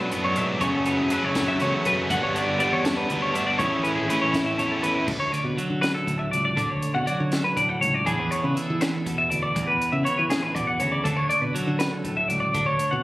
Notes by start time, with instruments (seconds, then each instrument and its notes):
Already playing: clean electric guitar B2 F#3 A3 F#4, overdriven electric guitar F#3 B3 D4
0.00 clean electric guitar B4
0.11 fingered electric bass F#2, clean electric guitar A2, overdriven electric guitar B2 F#3 B3 D4, closed hi-hat
0.25 clean electric guitar C#5
0.34 fingered electric bass B1, clean electric guitar G#2 E5, overdriven electric guitar B3 D4, closed hi-hat
0.39 overdriven electric guitar F#3
0.50 clean electric guitar D5
0.60 fingered electric bass F#1, clean electric guitar F#2 G#4 C#5, overdriven electric guitar F#2 C#3 F#3 A3 C#4, kick, closed hi-hat
0.74 clean electric guitar A4
0.85 overdriven electric guitar F#3 A3 C#4, clean electric guitar C#4 B4, closed hi-hat
0.97 fingered electric bass E1, clean electric guitar E4 G#4
1.10 overdriven electric guitar C#3 F#3 A3 C#4, clean electric guitar F#3 A3 B4, closed hi-hat
1.24 fingered electric bass F#1, clean electric guitar C#5
1.34 overdriven electric guitar F#3 A3 C#4, kick, snare, closed hi-hat
1.48 clean electric guitar E5
1.59 fingered electric bass C#2, clean electric guitar E2 C#5, overdriven electric guitar C#3 F#3 A3 C#4, closed hi-hat
1.74 clean electric guitar A4
1.85 fingered electric bass E1, clean electric guitar F#2 B4, overdriven electric guitar F#3 A3 C#4, closed hi-hat
2.09 fingered electric bass G1, overdriven electric guitar G2 D3 G3 B3 D4, clean electric guitar G2 F#4 F#5, kick, closed hi-hat
2.23 clean electric guitar C#5
2.34 overdriven electric guitar G3 B3 D4, clean electric guitar D4 D5, closed hi-hat
2.47 fingered electric bass G1
2.58 overdriven electric guitar D3 G3 B3, clean electric guitar G3 B3 D5, closed hi-hat
2.62 overdriven electric guitar D4
2.72 fingered electric bass E2, clean electric guitar C#5
2.84 overdriven electric guitar G3 B3 D4, clean electric guitar D4 A4, snare, closed hi-hat
2.97 clean electric guitar B4
3.08 fingered electric bass D2, clean electric guitar G2 E4, overdriven electric guitar D3 G3 B3, closed hi-hat
3.12 overdriven electric guitar D4
3.21 clean electric guitar F#4 C#5
3.33 fingered electric bass G1, overdriven electric guitar G3 B3 D4, clean electric guitar D4 E5, closed hi-hat
3.47 clean electric guitar D5
3.58 fingered electric bass A1, overdriven electric guitar A2 E3 A3 C#4 E4, clean electric guitar A2 E3 C#4 E4 G#4 C#5, kick, closed hi-hat
3.71 clean electric guitar A4
3.83 overdriven electric guitar A3 C#4 E4, clean electric guitar C#4 B4, closed hi-hat
3.95 fingered electric bass G#1, clean electric guitar E4 G#4
4.08 clean electric guitar E3 C#4 B4, overdriven electric guitar E3 A3, closed hi-hat
4.12 overdriven electric guitar C#4 E4
4.22 fingered electric bass A1, clean electric guitar C#5
4.31 overdriven electric guitar C#4 E4, clean electric guitar E4, kick, snare, closed hi-hat
4.37 overdriven electric guitar A3
4.46 clean electric guitar E5
4.57 clean electric guitar E2 A4 C#5, fingered electric bass E2, overdriven electric guitar E3 A3 C#4, closed hi-hat
4.62 overdriven electric guitar E4
4.71 clean electric guitar A4
4.81 fingered electric bass E2, overdriven electric guitar C#4 E4, clean electric guitar E4 B4, closed hi-hat
4.86 overdriven electric guitar A3
5.06 fingered electric bass D2, clean electric guitar D3 A4, kick, crash
5.20 clean electric guitar C#5
5.32 clean electric guitar D5, closed hi-hat
5.44 fingered electric bass B2, clean electric guitar B4
5.57 clean electric guitar F#3 A4, closed hi-hat
5.70 fingered electric bass D3
5.82 clean electric guitar B4, snare, closed hi-hat
5.94 clean electric guitar A4
6.06 fingered electric bass D2, clean electric guitar A2, kick, closed hi-hat
6.19 clean electric guitar E5
6.31 fingered electric bass C#2, clean electric guitar D5, closed hi-hat
6.45 clean electric guitar D5
6.56 fingered electric bass D2, clean electric guitar D3, kick, closed hi-hat
6.70 clean electric guitar C#5
6.82 closed hi-hat
6.95 fingered electric bass B2, clean electric guitar F#5
7.06 clean electric guitar F#3 D5, closed hi-hat
7.20 fingered electric bass D3, clean electric guitar C#5
7.32 clean electric guitar A4, snare, closed hi-hat
7.44 clean electric guitar B4
7.56 fingered electric bass D2, clean electric guitar A2 D5, kick, closed hi-hat
7.69 clean electric guitar F#5
7.81 fingered electric bass C#2, clean electric guitar C#5, closed hi-hat
7.94 clean electric guitar D5
8.06 clean electric guitar E2 E3 D4 E4 G#4, fingered electric bass E2, kick, closed hi-hat
8.19 clean electric guitar B4
8.31 clean electric guitar C#5, closed hi-hat
8.43 fingered electric bass C#3, clean electric guitar B4
8.55 clean electric guitar E3 A4, closed hi-hat
8.70 fingered electric bass E3
8.81 clean electric guitar B4, snare, closed hi-hat
8.94 clean electric guitar A4
9.06 fingered electric bass E2, clean electric guitar B2, kick, closed hi-hat
9.18 clean electric guitar E5
9.30 fingered electric bass D2, clean electric guitar D5, closed hi-hat
9.43 clean electric guitar D5
9.55 clean electric guitar E2, fingered electric bass E2, kick, closed hi-hat
9.67 clean electric guitar B4
9.82 closed hi-hat
9.92 fingered electric bass C#3, clean electric guitar E5
10.04 clean electric guitar E3 C#5, closed hi-hat
10.18 fingered electric bass E3, clean electric guitar B4
10.30 clean electric guitar A2 G#4, snare, closed hi-hat
10.43 clean electric guitar B4
10.55 fingered electric bass E2, clean electric guitar B2 D5, kick, closed hi-hat
10.67 clean electric guitar F#5
10.80 fingered electric bass D2, clean electric guitar C#3 C#5, closed hi-hat
10.92 clean electric guitar D5
11.04 fingered electric bass D2, clean electric guitar D3 A4, kick, closed hi-hat
11.17 clean electric guitar C#5
11.29 clean electric guitar D5, closed hi-hat
11.42 fingered electric bass B2, clean electric guitar B4
11.54 clean electric guitar F#3 A4, closed hi-hat
11.67 fingered electric bass D3
11.79 clean electric guitar B4, snare, closed hi-hat
11.92 clean electric guitar A4
12.04 fingered electric bass D2, clean electric guitar A2, kick, closed hi-hat
12.17 clean electric guitar E5
12.28 fingered electric bass C#2, clean electric guitar D5, closed hi-hat
12.40 clean electric guitar D5
12.54 fingered electric bass D2, clean electric guitar D3, kick, closed hi-hat
12.66 clean electric guitar C#5
12.79 closed hi-hat
12.91 fingered electric bass B2, clean electric guitar F#5